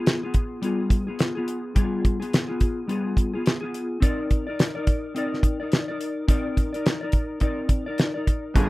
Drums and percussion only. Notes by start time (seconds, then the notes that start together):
0.06 snare, closed hi-hat
0.34 kick, closed hi-hat
0.63 closed hi-hat
0.90 kick, closed hi-hat
1.19 snare, closed hi-hat
1.48 closed hi-hat
1.76 kick, closed hi-hat
2.05 kick, closed hi-hat
2.22 closed hi-hat
2.33 snare, closed hi-hat
2.60 kick, closed hi-hat
2.89 closed hi-hat
3.17 kick, closed hi-hat
3.46 snare, closed hi-hat
3.74 closed hi-hat
4.02 kick, closed hi-hat
4.31 kick, closed hi-hat
4.59 snare, closed hi-hat
4.87 kick, closed hi-hat
5.16 closed hi-hat
5.34 snare
5.43 kick, closed hi-hat
5.72 snare, closed hi-hat
6.01 closed hi-hat
6.28 kick, closed hi-hat
6.57 kick, closed hi-hat
6.74 closed hi-hat
6.86 snare, closed hi-hat
7.12 kick, closed hi-hat
7.40 kick, closed hi-hat
7.69 kick, closed hi-hat
7.98 snare, closed hi-hat
8.27 kick, closed hi-hat
8.56 kick, closed hi-hat